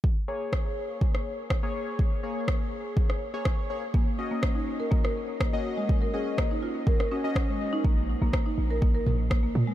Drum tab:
SD |----r----r--r---|----r----r--r---|----r----r--r---|----r----r--r---|
T2 |----------------|----------------|----------------|----------------|
BD |o---o---o---o---|o---o---o---o---|o---o---o---o---|o---o---o---o---|

SD |----r-------r---|
T2 |----------o---o-|
BD |o---o---o---o---|